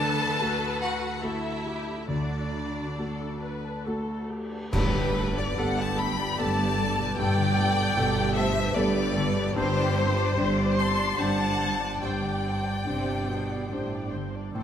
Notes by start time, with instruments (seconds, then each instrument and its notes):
Already playing: double bass section D2, grand piano D2, cello section D3, harp D3 D4 A4 A5, violin section A4 A5
0.01 harp A3, viola section B4
0.21 harp F#4
0.41 grand piano A3 F#4 A4
0.61 harp F#4
0.82 violin section F#4 F#5, harp F#5
1.03 harp A5
1.23 grand piano A3 F#4 A4, violin section E4 E5, harp A4, viola section A4
1.44 harp F#4
1.66 harp A3, viola section G4
1.87 harp D4
2.08 double bass section D2, grand piano D2, cello section D3, harp D3, violin section D4 D5, viola section F#4
2.32 harp A3
2.53 harp D4
2.76 harp F#4
2.97 grand piano A3 F#4 A4, harp A4, viola section A4
3.21 harp F#4
3.42 viola section B4, harp F#5
3.64 harp A5
3.86 grand piano A3 F#4 A4, harp A4, viola section A4
4.08 harp F#4
4.30 harp A3, viola section G4
4.51 harp D4
4.72 double bass section G1, timpani G2, grand piano G2, cello section G2, harp G2, viola section A3 A4, violin section G4 B4, violin B4, concert bass drum, crash
4.94 harp D3, viola section B3 G4
5.15 viola section A3 A4, harp G4
5.36 viola section B3 G4, harp A4, violin section B4 D5, violin D5
5.57 double bass section G1, cello section G2, viola section A3 A4, grand piano B3 G4 A4, violin section D5 F#5, violin F#5, harp B5
5.78 viola section B3 G4, violin section F#5 A5, violin A5
5.97 viola section A3 A4, violin section G5 B5, harp A5, violin B5
6.19 viola section B3 G4, harp D5
6.38 double bass section G1, cello section G2, viola section A3 A4, grand piano B3 G4 A4, harp A4, violin section D5 A5, violin A5
6.59 viola section B3 G4, harp G4
6.79 harp D3, viola section A3 A4
6.98 harp B2, viola section B3 G4
7.17 double bass section G1, grand piano G2, harp G2, cello section G2, viola section A3 A4, violin section D5 G5, violin G5
7.39 harp D3, viola section B3 G4
7.59 viola section A3 A4, harp G4
7.78 viola section B3 G4, harp A4
7.96 double bass section G1, cello section G2, grand piano B2 G4 A4, viola section A3 A4
8.17 viola section B3 G4
8.34 viola section A3 A4, violin section C5 E5, violin E5, harp A5
8.55 viola section B3 G4, harp B4
8.74 double bass section G1, cello section G2, viola section A3 A4, grand piano B3 G4 A4, harp A4, violin section B4 D5, violin D5
8.95 viola section B3 G4, harp G4
9.15 harp D3, viola section A3 A4
9.36 harp B3, viola section B3 G4
9.55 double bass section G1, harp G2, grand piano G2, cello section G2, viola section C4 C5, violin section G4 C5, violin C5
9.76 harp D3, viola section D4 D5
9.97 viola section C4 C5, harp G4
10.17 viola section D4 D5, harp C5
10.37 double bass section G1, cello section G2, viola section C4 C5, grand piano D4 G4 C5, harp D5
10.58 viola section D4 D5
10.78 viola section C4 C5, violin section A5 C6, violin C6, harp D6
10.97 viola section D4 D5, harp D5
11.18 double bass section G1, cello section G2, viola section C4 C5, grand piano D4 G4 C5, harp C5, violin section F#5 A5, violin A5
11.39 viola section D4 D5, harp G4
11.60 harp D3, viola section C4 C5
11.81 harp D4, viola section D4 D5
12.01 double bass section G1, harp G2, cello section G2, grand piano G2, viola section C4 C5, violin section D5 G5, violin G5
12.23 harp D3, viola section D4 D5
12.45 viola section C4 C5, harp G4
12.66 viola section D4 D5, harp C5
12.87 double bass section G1, cello section C3, viola section C4 C5, grand piano D4 G4 C5, harp D5
13.09 viola section D4 D5, harp G5
13.29 cello section B2, viola section C4 C5
13.50 viola section D4 D5, harp D5
13.70 double bass section G1, cello section A2, viola section C4 C5, grand piano D4 G4 C5, harp C5
13.91 viola section D4 D5, harp G4
14.13 cello section G2, harp D3, viola section C4 C5
14.34 viola section D4 D5, harp D4
14.55 double bass section A1, grand piano A2, harp A2, cello section A2, viola section C4 A4, violin section A4 C5, violin C5